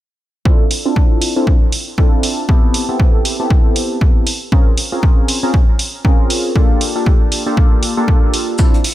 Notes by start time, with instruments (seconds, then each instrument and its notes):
0.45 synth keys C4 D4 E4 F4 A4, kick
0.71 open hi-hat
0.85 synth keys C4 D4 E4 F4 A4
0.96 kick
1.22 open hi-hat
1.36 synth keys C4 D4 E4 F4 A4
1.47 kick
1.72 open hi-hat
1.98 synth keys C4 D4 E4 F4 A4, kick
2.23 open hi-hat
2.49 synth keys B3 C4 E4 G4 A4, kick
2.74 open hi-hat
2.89 synth keys B3 C4 E4 G4 A4
3.00 kick
3.25 open hi-hat
3.40 synth keys B3 C4 E4 G4 A4
3.50 kick
3.76 open hi-hat
4.01 kick
4.27 open hi-hat
4.52 synth keys C4 C#4 F4 G#4 A#4, kick
4.77 open hi-hat
4.92 synth keys C4 C#4 F4 G#4 A#4
5.03 kick
5.28 open hi-hat
5.43 synth keys C4 C#4 F4 G#4 A#4
5.54 kick
5.79 open hi-hat
6.05 synth keys C4 C#4 F4 G#4 A#4, kick
6.30 open hi-hat
6.55 synth keys A#3 D4 F4 G4 A4, kick
6.81 open hi-hat
6.96 synth keys A#3 D4 F4 G4 A4
7.06 kick
7.32 open hi-hat
7.46 synth keys A#3 D4 F4 G4 A4
7.57 kick
7.83 open hi-hat
7.97 synth keys A#3 D4 F4 G4 A4
8.08 kick
8.34 open hi-hat
8.58 synth keys C4 D4 E4 F4 A4, kick, shaker
8.74 closed hi-hat
8.84 open hi-hat